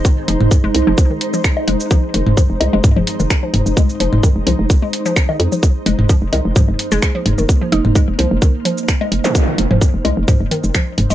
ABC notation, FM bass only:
X:1
M:4/4
L:1/16
Q:"Swing 16ths" 1/4=129
K:Fm
V:1 name="FM bass" clef=bass
z2 F,,, F,,, z F,,, C,, F,,, z6 F,,, z | z2 F,,, F,,, z F,,, C,, F,,, z F,,, z F,,, z2 F,,, F,,, | z2 F,,, F,,, z F,,, C,, F,,, z6 F,, z | z2 F,,, F,,, z F,,, C,, F,,, z F,,, z F,,, z2 F,,, F,,, |
z2 F,,, F,,, z F,,, C,, F,,, z6 F,,, z | z2 F,,, F,,, z F,,, C,, F,,, z F,,, z F,,, z2 F,,, F,,, |]